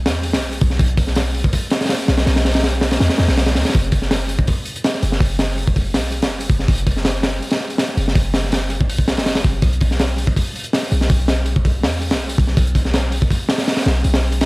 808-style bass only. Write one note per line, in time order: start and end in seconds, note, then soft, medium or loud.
0.06 0.35 E2 medium
0.34 0.60 B1 medium
0.61 0.78 B1 loud
0.79 1.52 B1 loud
2.08 2.25 B1 loud
2.27 2.99 B1 loud
3.00 3.09 E2 loud
3.19 3.27 E2 loud
3.28 3.57 B1 loud
3.56 3.64 D2 loud
3.75 4.47 F#1 loud
5.03 5.20 F#1 medium
5.21 5.96 F#1 loud
5.95 6.25 B1 loud
6.23 6.49 F#1 medium
6.50 6.66 F#1 medium
6.68 7.41 F#1 loud
7.97 8.14 F#1 loud
8.15 8.91 F#1 loud
8.89 9.19 B1 loud
9.17 9.43 F#1 medium
9.45 9.61 F#1 medium
9.62 10.35 B1 loud
10.92 11.08 B1 loud
11.10 11.85 B1 loud
11.84 12.13 E2 loud
12.12 12.38 B1 medium
12.38 12.55 B1 medium
12.57 13.29 B1 loud
13.86 14.03 B1 loud
14.05 14.46 B1 loud